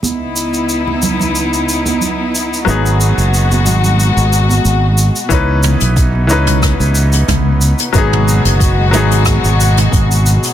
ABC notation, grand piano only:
X:1
M:4/4
L:1/8
Q:"Swing 16ths" 1/4=91
K:C#m
V:1 name="Grand piano"
z8 | [F,B,DG]8 | [E,CDB]3 [E,CDB]4- [E,CDB] | [F,B,DG]3 [F,B,DG]4- [F,B,DG] |]